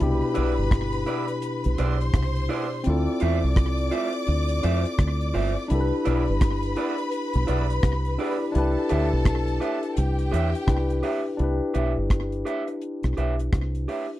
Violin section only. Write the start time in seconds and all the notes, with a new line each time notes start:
0.00 B4 B5
1.77 C5 C6
2.85 D5 D6
5.71 B4 B5
8.55 A4 A5
9.98 G4 G5